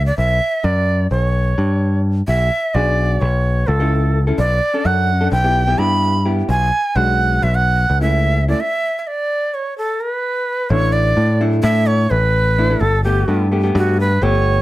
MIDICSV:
0, 0, Header, 1, 4, 480
1, 0, Start_track
1, 0, Key_signature, 2, "minor"
1, 0, Tempo, 468019
1, 181, Time_signature, 9, 3, 24, 8
1, 14993, End_track
2, 0, Start_track
2, 0, Title_t, "Shakuhachi"
2, 0, Program_c, 0, 77
2, 64, Note_on_c, 0, 74, 66
2, 174, Note_off_c, 0, 74, 0
2, 178, Note_on_c, 0, 76, 84
2, 658, Note_on_c, 0, 74, 81
2, 673, Note_off_c, 0, 76, 0
2, 1127, Note_off_c, 0, 74, 0
2, 1133, Note_on_c, 0, 73, 67
2, 2054, Note_off_c, 0, 73, 0
2, 2333, Note_on_c, 0, 76, 84
2, 2813, Note_on_c, 0, 74, 80
2, 2828, Note_off_c, 0, 76, 0
2, 3287, Note_on_c, 0, 73, 69
2, 3302, Note_off_c, 0, 74, 0
2, 3765, Note_on_c, 0, 69, 73
2, 3780, Note_off_c, 0, 73, 0
2, 4310, Note_off_c, 0, 69, 0
2, 4496, Note_on_c, 0, 74, 89
2, 4981, Note_on_c, 0, 78, 86
2, 4996, Note_off_c, 0, 74, 0
2, 5448, Note_off_c, 0, 78, 0
2, 5454, Note_on_c, 0, 79, 87
2, 5932, Note_on_c, 0, 83, 95
2, 5948, Note_off_c, 0, 79, 0
2, 6439, Note_off_c, 0, 83, 0
2, 6666, Note_on_c, 0, 80, 88
2, 7137, Note_on_c, 0, 78, 87
2, 7152, Note_off_c, 0, 80, 0
2, 7621, Note_on_c, 0, 76, 85
2, 7636, Note_off_c, 0, 78, 0
2, 7741, Note_on_c, 0, 78, 93
2, 7757, Note_off_c, 0, 76, 0
2, 8215, Note_off_c, 0, 78, 0
2, 8221, Note_on_c, 0, 76, 80
2, 8666, Note_off_c, 0, 76, 0
2, 8703, Note_on_c, 0, 74, 77
2, 8822, Note_on_c, 0, 76, 88
2, 8838, Note_off_c, 0, 74, 0
2, 9219, Note_off_c, 0, 76, 0
2, 9219, Note_on_c, 0, 76, 52
2, 9303, Note_on_c, 0, 74, 76
2, 9319, Note_off_c, 0, 76, 0
2, 9785, Note_on_c, 0, 73, 65
2, 9800, Note_off_c, 0, 74, 0
2, 10022, Note_off_c, 0, 73, 0
2, 10028, Note_on_c, 0, 69, 69
2, 10266, Note_on_c, 0, 71, 79
2, 10282, Note_off_c, 0, 69, 0
2, 10972, Note_on_c, 0, 73, 97
2, 10987, Note_off_c, 0, 71, 0
2, 11205, Note_on_c, 0, 74, 85
2, 11220, Note_off_c, 0, 73, 0
2, 11693, Note_off_c, 0, 74, 0
2, 11927, Note_on_c, 0, 76, 97
2, 12172, Note_on_c, 0, 73, 91
2, 12187, Note_off_c, 0, 76, 0
2, 12413, Note_on_c, 0, 71, 89
2, 12429, Note_off_c, 0, 73, 0
2, 13130, Note_on_c, 0, 69, 84
2, 13145, Note_off_c, 0, 71, 0
2, 13367, Note_off_c, 0, 69, 0
2, 13373, Note_on_c, 0, 67, 75
2, 13825, Note_off_c, 0, 67, 0
2, 14120, Note_on_c, 0, 66, 79
2, 14336, Note_off_c, 0, 66, 0
2, 14359, Note_on_c, 0, 71, 82
2, 14595, Note_on_c, 0, 73, 87
2, 14610, Note_off_c, 0, 71, 0
2, 14993, Note_off_c, 0, 73, 0
2, 14993, End_track
3, 0, Start_track
3, 0, Title_t, "Hollow-body jazz guitar"
3, 0, Program_c, 1, 26
3, 2815, Note_on_c, 1, 62, 56
3, 2820, Note_on_c, 1, 66, 52
3, 2829, Note_on_c, 1, 68, 49
3, 3297, Note_off_c, 1, 66, 0
3, 3298, Note_off_c, 1, 62, 0
3, 3299, Note_off_c, 1, 68, 0
3, 3897, Note_on_c, 1, 69, 73
3, 3903, Note_on_c, 1, 64, 56
3, 3910, Note_on_c, 1, 61, 58
3, 4285, Note_off_c, 1, 61, 0
3, 4286, Note_off_c, 1, 64, 0
3, 4286, Note_off_c, 1, 69, 0
3, 4380, Note_on_c, 1, 69, 66
3, 4385, Note_on_c, 1, 64, 53
3, 4390, Note_on_c, 1, 61, 53
3, 4499, Note_off_c, 1, 61, 0
3, 4499, Note_off_c, 1, 64, 0
3, 4500, Note_off_c, 1, 69, 0
3, 4857, Note_on_c, 1, 61, 63
3, 4864, Note_on_c, 1, 69, 70
3, 4868, Note_on_c, 1, 62, 50
3, 5245, Note_off_c, 1, 61, 0
3, 5247, Note_off_c, 1, 62, 0
3, 5247, Note_off_c, 1, 69, 0
3, 5340, Note_on_c, 1, 69, 74
3, 5344, Note_on_c, 1, 62, 59
3, 5349, Note_on_c, 1, 61, 58
3, 5459, Note_off_c, 1, 61, 0
3, 5459, Note_off_c, 1, 62, 0
3, 5459, Note_off_c, 1, 69, 0
3, 5576, Note_on_c, 1, 59, 62
3, 5583, Note_on_c, 1, 67, 72
3, 5584, Note_on_c, 1, 64, 51
3, 5771, Note_off_c, 1, 59, 0
3, 5772, Note_off_c, 1, 64, 0
3, 5773, Note_off_c, 1, 67, 0
3, 5816, Note_on_c, 1, 59, 58
3, 5823, Note_on_c, 1, 64, 48
3, 5823, Note_on_c, 1, 67, 66
3, 5914, Note_off_c, 1, 59, 0
3, 5914, Note_off_c, 1, 64, 0
3, 5916, Note_off_c, 1, 67, 0
3, 5942, Note_on_c, 1, 67, 69
3, 5947, Note_on_c, 1, 64, 51
3, 5951, Note_on_c, 1, 59, 51
3, 6326, Note_off_c, 1, 59, 0
3, 6327, Note_off_c, 1, 64, 0
3, 6328, Note_off_c, 1, 67, 0
3, 6414, Note_on_c, 1, 67, 70
3, 6417, Note_on_c, 1, 64, 56
3, 6419, Note_on_c, 1, 59, 62
3, 6654, Note_off_c, 1, 59, 0
3, 6655, Note_off_c, 1, 64, 0
3, 6656, Note_off_c, 1, 67, 0
3, 7136, Note_on_c, 1, 56, 48
3, 7143, Note_on_c, 1, 62, 47
3, 7147, Note_on_c, 1, 66, 49
3, 7617, Note_off_c, 1, 56, 0
3, 7619, Note_off_c, 1, 62, 0
3, 7619, Note_off_c, 1, 66, 0
3, 8216, Note_on_c, 1, 64, 67
3, 8219, Note_on_c, 1, 61, 57
3, 8222, Note_on_c, 1, 57, 55
3, 8604, Note_off_c, 1, 57, 0
3, 8605, Note_off_c, 1, 61, 0
3, 8606, Note_off_c, 1, 64, 0
3, 8701, Note_on_c, 1, 64, 61
3, 8704, Note_on_c, 1, 61, 44
3, 8711, Note_on_c, 1, 57, 54
3, 8819, Note_off_c, 1, 57, 0
3, 8820, Note_off_c, 1, 61, 0
3, 8821, Note_off_c, 1, 64, 0
3, 10982, Note_on_c, 1, 57, 58
3, 10987, Note_on_c, 1, 62, 49
3, 10994, Note_on_c, 1, 64, 56
3, 11565, Note_off_c, 1, 57, 0
3, 11565, Note_off_c, 1, 62, 0
3, 11565, Note_off_c, 1, 64, 0
3, 11700, Note_on_c, 1, 64, 89
3, 11703, Note_on_c, 1, 62, 64
3, 11708, Note_on_c, 1, 57, 75
3, 12478, Note_off_c, 1, 57, 0
3, 12478, Note_off_c, 1, 62, 0
3, 12479, Note_off_c, 1, 64, 0
3, 12905, Note_on_c, 1, 57, 69
3, 12906, Note_on_c, 1, 62, 57
3, 12912, Note_on_c, 1, 64, 76
3, 13001, Note_off_c, 1, 62, 0
3, 13002, Note_off_c, 1, 57, 0
3, 13002, Note_off_c, 1, 64, 0
3, 13022, Note_on_c, 1, 64, 73
3, 13027, Note_on_c, 1, 62, 57
3, 13032, Note_on_c, 1, 57, 59
3, 13144, Note_off_c, 1, 62, 0
3, 13144, Note_off_c, 1, 64, 0
3, 13145, Note_off_c, 1, 57, 0
3, 13385, Note_on_c, 1, 57, 63
3, 13390, Note_on_c, 1, 67, 74
3, 13392, Note_on_c, 1, 59, 53
3, 13579, Note_off_c, 1, 57, 0
3, 13579, Note_off_c, 1, 59, 0
3, 13581, Note_off_c, 1, 67, 0
3, 13619, Note_on_c, 1, 57, 60
3, 13621, Note_on_c, 1, 59, 50
3, 13627, Note_on_c, 1, 67, 55
3, 13815, Note_off_c, 1, 57, 0
3, 13818, Note_off_c, 1, 59, 0
3, 13818, Note_off_c, 1, 67, 0
3, 13861, Note_on_c, 1, 57, 71
3, 13867, Note_on_c, 1, 59, 56
3, 13873, Note_on_c, 1, 67, 71
3, 13961, Note_off_c, 1, 57, 0
3, 13962, Note_off_c, 1, 59, 0
3, 13963, Note_off_c, 1, 67, 0
3, 13983, Note_on_c, 1, 67, 73
3, 13986, Note_on_c, 1, 59, 58
3, 13991, Note_on_c, 1, 57, 57
3, 14469, Note_off_c, 1, 57, 0
3, 14469, Note_off_c, 1, 59, 0
3, 14470, Note_off_c, 1, 67, 0
3, 14586, Note_on_c, 1, 57, 76
3, 14593, Note_on_c, 1, 59, 64
3, 14593, Note_on_c, 1, 67, 87
3, 14993, Note_off_c, 1, 57, 0
3, 14993, Note_off_c, 1, 59, 0
3, 14993, Note_off_c, 1, 67, 0
3, 14993, End_track
4, 0, Start_track
4, 0, Title_t, "Picked electric bass"
4, 0, Program_c, 2, 34
4, 0, Note_on_c, 2, 37, 76
4, 106, Note_off_c, 2, 37, 0
4, 182, Note_on_c, 2, 35, 75
4, 397, Note_off_c, 2, 35, 0
4, 656, Note_on_c, 2, 42, 84
4, 1089, Note_off_c, 2, 42, 0
4, 1137, Note_on_c, 2, 35, 80
4, 1569, Note_off_c, 2, 35, 0
4, 1620, Note_on_c, 2, 43, 73
4, 2266, Note_off_c, 2, 43, 0
4, 2335, Note_on_c, 2, 35, 78
4, 2552, Note_off_c, 2, 35, 0
4, 2816, Note_on_c, 2, 35, 84
4, 3247, Note_off_c, 2, 35, 0
4, 3295, Note_on_c, 2, 35, 77
4, 3727, Note_off_c, 2, 35, 0
4, 3773, Note_on_c, 2, 37, 82
4, 4421, Note_off_c, 2, 37, 0
4, 4492, Note_on_c, 2, 35, 81
4, 4709, Note_off_c, 2, 35, 0
4, 4974, Note_on_c, 2, 42, 79
4, 5405, Note_off_c, 2, 42, 0
4, 5452, Note_on_c, 2, 35, 88
4, 5885, Note_off_c, 2, 35, 0
4, 5930, Note_on_c, 2, 43, 77
4, 6579, Note_off_c, 2, 43, 0
4, 6652, Note_on_c, 2, 35, 80
4, 6869, Note_off_c, 2, 35, 0
4, 7133, Note_on_c, 2, 35, 84
4, 7566, Note_off_c, 2, 35, 0
4, 7612, Note_on_c, 2, 35, 86
4, 8046, Note_off_c, 2, 35, 0
4, 8097, Note_on_c, 2, 37, 79
4, 8744, Note_off_c, 2, 37, 0
4, 10975, Note_on_c, 2, 33, 85
4, 11410, Note_off_c, 2, 33, 0
4, 11453, Note_on_c, 2, 45, 82
4, 11889, Note_off_c, 2, 45, 0
4, 11932, Note_on_c, 2, 45, 94
4, 12368, Note_off_c, 2, 45, 0
4, 12419, Note_on_c, 2, 33, 86
4, 13068, Note_off_c, 2, 33, 0
4, 13134, Note_on_c, 2, 31, 88
4, 13570, Note_off_c, 2, 31, 0
4, 13619, Note_on_c, 2, 43, 76
4, 14053, Note_off_c, 2, 43, 0
4, 14101, Note_on_c, 2, 43, 101
4, 14534, Note_off_c, 2, 43, 0
4, 14578, Note_on_c, 2, 31, 87
4, 14993, Note_off_c, 2, 31, 0
4, 14993, End_track
0, 0, End_of_file